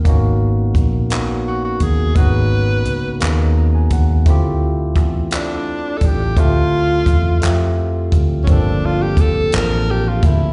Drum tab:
HH |x-xx-x|x-xx-x|x-xx-x|x-xx-x|
CP |---x--|---x--|---x--|---x--|
BD |o-o--o|o----o|o-o--o|o-o--o|

HH |x-xx-x|
CP |---x--|
BD |o-o--o|